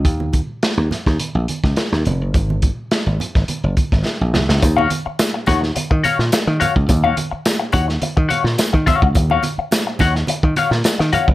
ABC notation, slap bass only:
X:1
M:4/4
L:1/16
Q:1/4=106
K:Ebm
V:1 name="Slap bass" clef=bass
E,,3 z2 E,, z E,, z B,,, z D,, z E,, F,,, G,,, | A,,,3 z2 A,,, z A,,, z G,,, z A,,, z B,,, =C,, D,, | E,,2 z4 E,,2 z E, z B,, z E, z D,, | E,,2 z4 E,,2 z E, z B,, z E, z D,, |
E,,2 z4 E,,2 z E, z B,, z E, z G,,, |]